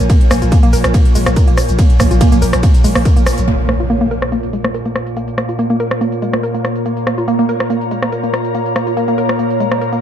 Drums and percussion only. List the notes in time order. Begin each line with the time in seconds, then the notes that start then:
0.10 kick, closed hi-hat, ride, shaker
0.21 closed hi-hat
0.31 cross-stick, open hi-hat, shaker
0.42 closed hi-hat, shaker
0.52 kick, closed hi-hat, ride, shaker
0.63 closed hi-hat
0.73 open hi-hat, shaker
0.84 cross-stick, closed hi-hat, shaker
0.94 kick, closed hi-hat, ride, shaker
1.05 closed hi-hat
1.15 open hi-hat, shaker
1.26 cross-stick, closed hi-hat, shaker
1.36 kick, closed hi-hat, ride, shaker
1.48 closed hi-hat
1.57 cross-stick, open hi-hat, shaker
1.69 closed hi-hat, shaker
1.79 kick, closed hi-hat, ride, shaker
1.90 closed hi-hat
2.00 kick, cross-stick, open hi-hat, shaker
2.11 closed hi-hat, shaker
2.21 kick, closed hi-hat, ride, shaker
2.32 closed hi-hat, shaker
2.42 open hi-hat, shaker
2.53 cross-stick, closed hi-hat, shaker
2.63 kick, closed hi-hat, ride, shaker
2.74 closed hi-hat, shaker
2.84 open hi-hat, shaker
2.95 cross-stick, open hi-hat, shaker
3.05 kick, closed hi-hat, ride, shaker
3.17 closed hi-hat, shaker
3.26 cross-stick, open hi-hat, shaker
3.38 closed hi-hat, shaker
3.48 closed hi-hat
3.59 closed hi-hat
3.69 cross-stick, closed hi-hat
3.80 closed hi-hat
3.90 closed hi-hat
4.01 closed hi-hat
4.11 closed hi-hat
4.22 cross-stick, closed hi-hat
4.32 closed hi-hat
4.43 closed hi-hat
4.53 closed hi-hat
4.64 cross-stick, closed hi-hat
4.74 closed hi-hat
4.86 closed hi-hat
4.96 cross-stick, closed hi-hat
5.07 closed hi-hat
5.17 closed hi-hat
5.28 closed hi-hat
5.38 cross-stick, closed hi-hat
5.49 closed hi-hat
5.59 closed hi-hat
5.70 closed hi-hat
5.80 closed hi-hat
5.91 cross-stick, closed hi-hat
6.01 closed hi-hat
6.12 closed hi-hat
6.22 closed hi-hat
6.33 cross-stick, closed hi-hat
6.43 closed hi-hat
6.55 closed hi-hat
6.65 cross-stick, closed hi-hat
6.76 closed hi-hat
6.86 closed hi-hat
6.97 closed hi-hat
7.07 cross-stick, closed hi-hat
7.18 closed hi-hat
7.28 closed hi-hat
7.39 closed hi-hat
7.49 closed hi-hat
7.60 cross-stick, closed hi-hat
7.70 closed hi-hat
7.81 closed hi-hat
7.91 closed hi-hat
8.02 cross-stick, closed hi-hat
8.12 closed hi-hat
8.24 closed hi-hat
8.34 cross-stick, closed hi-hat
8.45 closed hi-hat
8.55 closed hi-hat
8.66 closed hi-hat
8.76 cross-stick, closed hi-hat
8.87 closed hi-hat
8.97 closed hi-hat
9.08 closed hi-hat
9.18 closed hi-hat
9.29 cross-stick, closed hi-hat
9.39 closed hi-hat
9.50 closed hi-hat
9.60 closed hi-hat
9.72 cross-stick, closed hi-hat
9.81 closed hi-hat
9.93 closed hi-hat